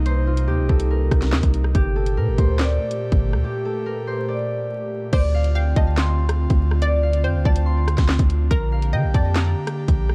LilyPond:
<<
  \new Staff \with { instrumentName = "Harp" } { \time 4/4 \key d \phrygian \tempo 4 = 142 c''8 f'8 g'8 a'8 bes'2 | g'8 a'8 bes'8 c''8 d''2 | g'8 a'8 bes'8 c''8 d''2 | d''8 f''8 g''8 a''8 c'''2 |
d''8 f''8 g''8 a''8 c'''2 | bes''8 f''8 g''8 a''8 bes''2 | }
  \new Staff \with { instrumentName = "Synth pluck" } { \time 4/4 \key d \phrygian r1 | r1 | r1 | c''4 f''8 ees''8 r2 |
d''4 c''8 d''8 r2 | bes'4 ees''8 d''8 r2 | }
  \new Staff \with { instrumentName = "Analog synth pad" } { \time 4/4 \key d \phrygian << { <bes ees'>1 | <a g'>1~ | <a g'>1 | <c' f'>1~ |
<c' f'>1 | <bes g'>1 | } \\ { c1 | bes,1~ | bes,1 | d1~ |
d1~ | d1 | } >> }
  \new Staff \with { instrumentName = "808-style bass" } { \clef bass \time 4/4 \key d \phrygian c,4 ees,16 c,16 c,4 c,8 ees,16 c,8. | g,,4 bes,16 g,,16 d,4 r8. g,,8 d,16 | r1 | d,4. d,4.~ d,16 d,8.~ |
d,4 f,16 d,16 d,4~ d,16 d,8 d,8. | bes,,4 d16 bes,,16 f,4 r8. bes,,8. | }
  \new DrumStaff \with { instrumentName = "Drums" } \drummode { \time 4/4 hh8. hh16 r8 bd16 hh16 r8 <hh bd ss>16 <hh sn>16 <hc sn>16 <hh bd>16 hh16 ss16 | <hh bd>8. hh16 r8 <hh bd>8 <hc hh sn>8. hh16 r16 <hh bd>8 ss16 | r4 r4 r4 r4 | <cymc hh bd>8. hh16 r8 <hh bd>8 <hc hh sn>8. <hh ss>16 r16 <hh bd>8 ss16 |
hh8. hh16 r8 bd16 hh16 r8 <hh ss>16 <hh bd sn>16 <hc sn>16 <hh bd>16 hh8 | <hh bd>8. hh16 r8 <hh bd>8 <hc hh sn>8. <hh ss>16 r16 <hh bd>8 ss16 | }
>>